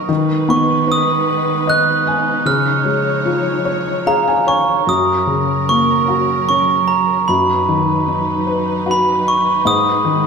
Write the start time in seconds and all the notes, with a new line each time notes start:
Already playing: A#3 F#4 A#4 D#5
0.09 D#3 G#3 D#4 B4
0.49 B3 C#6
0.87 B4
0.92 D#6
1.67 D#5 F#6
2.07 G#5
2.46 C#3 F3 C#5 F6
2.85 G#3
3.26 F4
3.65 C#5
4.07 G#4 F5 A#5
4.28 G#5
4.47 C#5 G#5 C#6
4.87 F#2 F#3 C#4 A#4 D#6
5.27 C#3
5.69 A#3 C#6
6.08 F#4
6.49 C#4 C#6
6.88 A#5
7.28 F#2 D#4 B4 B5
7.69 D#3
8.08 D#4
8.47 B4
8.86 F#4
8.91 B5
9.28 C#6
9.65 G#2 G#3 D#6
10.05 D#3